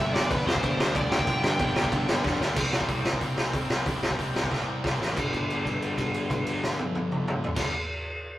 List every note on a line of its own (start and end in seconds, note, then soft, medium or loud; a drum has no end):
0.00 0.13 G1 loud
0.00 0.14 G2 loud
0.00 0.13 D3 loud
0.00 0.13 G3 loud
0.00 0.15 B3 loud
0.00 0.15 D4 loud
0.00 0.14 E5 loud
0.14 0.29 G1 loud
0.14 0.29 G2 medium
0.14 0.29 D3 medium
0.14 0.31 G3 loud
0.14 0.31 B3 loud
0.14 0.31 D4 loud
0.14 0.30 D5 medium
0.14 snare loud
0.29 0.45 G1 medium
0.29 0.47 G2 loud
0.29 0.45 D3 loud
0.29 0.45 G3 loud
0.29 0.48 B3 loud
0.29 0.47 D4 loud
0.29 0.47 B4 medium
0.29 kick loud
0.29 ride medium
0.45 0.62 F2 loud
0.45 0.60 G2 medium
0.45 0.61 D3 medium
0.45 0.62 G3 loud
0.45 0.63 B3 loud
0.45 0.64 D4 medium
0.45 0.97 C5 loud
0.45 snare loud
0.55 kick medium
0.61 0.78 G1 loud
0.61 0.78 G2 loud
0.61 0.78 D3 loud
0.61 0.78 G3 loud
0.61 0.79 B3 loud
0.61 0.78 D4 loud
0.61 kick loud
0.61 ride medium
0.78 0.94 D2 medium
0.78 0.93 G2 medium
0.78 0.94 D3 medium
0.78 0.95 G3 loud
0.78 0.95 B3 loud
0.78 0.95 D4 loud
0.78 snare loud
0.95 1.24 D2 loud
0.95 1.11 G2 medium
0.95 1.10 D3 loud
0.95 1.10 G3 loud
0.95 1.11 B3 loud
0.95 1.11 D4 loud
0.95 1.10 D5 loud
0.95 kick loud
0.95 ride medium
1.11 1.25 G2 medium
1.11 1.26 D3 medium
1.11 1.27 G3 medium
1.11 1.27 B3 medium
1.11 1.27 D4 loud
1.11 2.21 G5 medium
1.11 snare loud
1.19 kick medium
1.26 1.42 G1 loud
1.26 1.43 G2 loud
1.26 1.43 D3 loud
1.26 1.42 G3 loud
1.26 1.42 B3 loud
1.26 1.41 D4 loud
1.26 kick loud
1.26 ride medium
1.42 1.58 G1 loud
1.42 1.58 G2 medium
1.42 1.59 D3 medium
1.42 1.59 G3 loud
1.42 1.59 B3 medium
1.42 1.60 D4 loud
1.42 snare loud
1.59 1.89 G1 loud
1.59 1.76 G2 loud
1.59 1.75 D3 medium
1.59 1.75 G3 loud
1.59 1.75 B3 loud
1.59 1.75 D4 loud
1.59 kick loud
1.59 ride medium
1.76 1.91 G2 medium
1.76 1.91 D3 medium
1.76 1.92 G3 loud
1.76 1.92 B3 loud
1.76 1.92 D4 loud
1.76 snare loud
1.84 kick loud
1.92 2.21 G1 loud
1.92 2.09 G2 loud
1.92 2.09 D3 loud
1.92 2.08 G3 loud
1.92 2.08 B3 loud
1.92 2.07 D4 medium
1.92 kick loud
1.92 ride medium
2.08 2.22 G2 medium
2.08 2.23 D3 medium
2.08 2.24 G3 medium
2.08 2.24 B3 loud
2.08 2.24 D4 loud
2.08 snare loud
2.24 2.39 F1 medium
2.24 2.41 G2 medium
2.24 2.40 D3 loud
2.24 2.39 G3 medium
2.24 2.40 B3 loud
2.24 2.39 D4 loud
2.24 kick loud
2.24 snare medium
2.40 2.55 D2 medium
2.40 2.57 G2 medium
2.40 2.55 D3 medium
2.40 2.56 G3 medium
2.40 2.56 B3 medium
2.40 2.56 D4 loud
2.40 snare medium
2.56 2.83 C2 medium
2.56 2.88 C3 medium
2.56 2.88 G3 loud
2.56 2.90 C4 loud
2.56 kick loud
2.56 crash loud
2.73 snare loud
2.81 kick medium
2.88 3.02 C2 medium
2.88 3.05 C3 medium
2.88 3.04 G3 medium
2.88 3.04 C4 medium
2.88 kick loud
2.88 open hi-hat medium
3.04 3.18 C2 medium
3.04 3.20 C3 medium
3.04 3.21 G3 medium
3.04 3.22 C4 medium
3.04 snare loud
3.13 kick medium
3.21 3.35 C2 medium
3.21 3.52 C3 medium
3.21 3.54 G3 loud
3.21 3.54 C4 loud
3.21 kick medium
3.21 open hi-hat medium
3.37 3.51 C2 medium
3.37 snare loud
3.53 3.67 C2 medium
3.53 3.70 C3 medium
3.53 3.70 G3 medium
3.53 3.69 C4 medium
3.53 kick loud
3.53 open hi-hat medium
3.70 3.83 C2 medium
3.70 3.84 C3 medium
3.70 3.85 G3 medium
3.70 3.85 C4 medium
3.70 snare loud
3.85 4.00 C2 medium
3.85 4.17 C3 loud
3.85 4.18 G3 medium
3.85 4.19 C4 loud
3.85 kick loud
3.85 open hi-hat medium
4.03 4.16 C2 medium
4.03 snare loud
4.11 kick medium
4.19 4.32 C2 medium
4.19 4.35 C3 medium
4.19 4.34 G3 medium
4.19 4.33 C4 medium
4.19 kick medium
4.19 open hi-hat medium
4.34 4.49 C2 medium
4.34 4.49 C3 medium
4.34 4.49 G3 medium
4.34 4.50 C4 medium
4.34 snare loud
4.44 kick medium
4.50 4.65 C2 medium
4.50 4.83 C3 loud
4.50 4.84 G3 loud
4.50 4.84 C4 loud
4.50 kick medium
4.50 snare medium
4.68 4.81 C2 medium
4.84 4.98 C2 medium
4.84 5.00 C3 medium
4.84 4.99 G3 medium
4.84 4.99 C4 medium
4.84 kick loud
4.84 snare medium
5.00 5.14 A1 medium
5.00 5.16 C3 medium
5.00 5.16 G3 medium
5.00 5.15 C4 medium
5.00 snare medium
5.16 7.50 G1 medium
5.16 7.54 G2 medium
5.16 7.57 D3 loud
5.16 kick medium
5.16 crash medium
5.20 7.58 G3 medium
5.33 kick medium
5.33 crash soft
5.50 crash soft
5.65 kick medium
5.65 crash soft
5.82 crash soft
5.98 kick medium
5.98 crash soft
6.14 crash soft
6.30 kick medium
6.30 crash soft
6.46 crash medium
6.63 snare medium
6.79 high tom medium
6.95 high tom medium
7.12 mid tom medium
7.28 mid tom medium
7.44 floor tom loud
7.55 7.70 G1 loud
7.55 7.71 G2 medium
7.55 7.72 D3 loud
7.55 7.73 G3 loud
7.55 kick loud
7.55 snare medium
7.55 crash loud